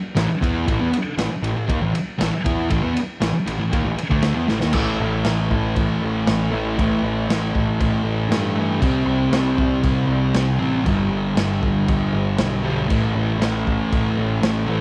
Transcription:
0.15 A1 A2 E3, snare, ride
0.28 muted picked electric bass stroke, muted distorted electric guitar stroke
0.41 E2 E3 B3 E4, kick, ride
0.67 A1 A2 E3, kick, ride
0.79 E2 E3 B3
0.92 muted picked electric bass stroke, muted distorted electric guitar stroke, ride
1.17 A1 A2 E3, snare, ride
1.30 muted picked electric bass stroke, muted distorted electric guitar stroke
1.42 A1 A2 E3, ride
1.56 A1 A2 E3
1.68 D#2 D#3 A#3, kick, ride
1.81 A1 A2 E3
1.94 muted distorted electric guitar stroke, muted picked electric bass stroke, ride
2.18 A1 A2 E3, snare, ride
2.32 muted distorted electric guitar stroke, muted picked electric bass stroke
2.44 E2 E3 B3 E4, kick, ride
2.70 A1 A2 E3, kick, ride
2.82 E2 E3 B3
2.95 muted distorted electric guitar stroke, muted picked electric bass stroke, ride
3.21 A1 A2 E3, snare, ride
3.34 muted distorted electric guitar stroke, muted picked electric bass stroke
3.46 A1 A2 E3, ride
3.58 A1 A2 E3
3.72 D#2 D#3 A#3, kick, ride
3.85 A1 A2 E3
3.97 muted distorted electric guitar stroke, muted picked electric bass stroke, ride
4.10 D2 D3 A3 D4, kick
4.23 snare, ride
4.35 E2 E3 B3
4.48 A1 A2 E3, snare
4.61 D#2 D#3 A#3, snare
4.73 A1 A2 E3, kick, crash
4.77 A3
5.00 A1
5.25 A1, snare, crash
5.50 A1, kick
5.76 A1, kick, crash
6.02 A1
6.27 A1, snare, crash
6.52 A1 A2 E3 A3
6.78 A1 A2 E3 A3, kick, crash
7.03 A1
7.29 A1, snare, crash
7.54 A1, kick
7.81 A1, kick, crash
8.03 A1
8.29 G2, snare, crash
8.55 A2 E3 A3
8.81 C2 C3 G3 C4, kick, crash
9.06 C2
9.31 C2, snare, crash
9.58 C2, kick
9.83 C2, kick, crash
10.07 C2
10.34 C2, snare, crash
10.59 A1 C3 G3 C4
10.84 G1 G2 D3 G3, kick, crash
11.11 G1
11.36 G1, snare, crash
11.62 G1, kick
11.88 G1, kick, crash
12.14 G1
12.38 B1, snare, crash
12.63 G2 D3 G3
12.89 A1 A2 E3 A3, kick, crash
13.15 A1
13.39 A1, snare, crash
13.66 A1, kick
13.92 A1, kick, crash
14.17 A1
14.42 A1, snare, crash
14.68 A1 A2 E3 A3

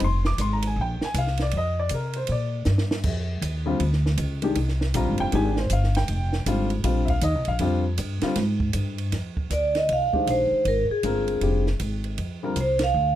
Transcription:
0.00 F1, ride
0.04 C6
0.25 D6, snare
0.38 G#1 C6, hi-hat pedal, ride
0.53 A#5
0.62 ride
0.67 G#5
0.76 A#1
0.81 G5
1.01 G#5, muted upright bass stroke, snare
1.14 C2, hi-hat pedal, ride
1.18 F5
1.27 snare
1.37 snare, ride
1.42 D5
1.51 F2, ride
1.57 D#5
1.79 D5
1.89 C3, hi-hat pedal, ride
1.94 A#4
2.13 C5, ride
2.27 A#2, ride
2.32 D5
2.65 G2, snare, hi-hat pedal
2.78 snare
2.91 snare
3.04 F2, kick, crash
3.41 D#2, hi-hat pedal, ride
3.66 D3 G3 C4 F4
3.80 D2, ride
3.93 snare
4.06 snare
4.18 C#2, hi-hat pedal, ride
4.42 D#3 G#3 D4 G4, ride
4.55 C2, ride
4.68 snare
4.81 snare
4.94 A#1 D3 G3 C4 F4 A#5, hi-hat pedal, ride
5.07 G#1
5.18 F1 G5, ride
5.32 G#1 D#3 G#3 D4 G4 G#5, ride
5.57 C5, snare
5.70 G1 F5, hi-hat pedal, ride
5.84 snare
5.95 G5, snare, ride
6.08 F1, ride
6.33 snare
6.46 G#1 D3 G3 C4 F4, hi-hat pedal, ride
6.70 ride
6.83 A#1 D3 G3 C4 F4, ride
7.05 E5, kick, ride
7.10 F5
7.21 D#2 D#5, hi-hat pedal, ride
7.35 C2
7.45 A#1 F5, ride
7.59 F2 D3 G3 C4 F4, ride
7.98 G2, hi-hat pedal, ride
8.21 D3 G3 C4 F4, muted upright bass stroke, snare, ride
8.36 G#2, snare, ride
8.60 kick
8.73 G2, hi-hat pedal, ride
8.98 ride
9.12 F2, snare, ride
9.37 kick
9.50 D2 D5, hi-hat pedal, ride
9.75 D#5, snare, ride
9.89 C2 F5, ride
10.13 D#3 G#3 D4 G4 C5, muted upright bass stroke, kick
10.27 A#1 C5, hi-hat pedal, ride
10.52 muted upright bass stroke
10.65 G#1 A#4, ride
10.90 G#4, muted upright bass stroke
11.03 G1 D3 G#3 C4 F4 A#4, hi-hat pedal, ride
11.28 ride
11.41 F1 D3 G3 C4 F4 G4, ride
11.67 snare
11.80 G#1, hi-hat pedal, ride
12.04 ride
12.18 F2, ride
12.43 D3 G3 C4 F4 A#4
12.56 C2, hi-hat pedal, ride
12.61 C5
12.79 snare, ride
12.84 F5
12.94 D2

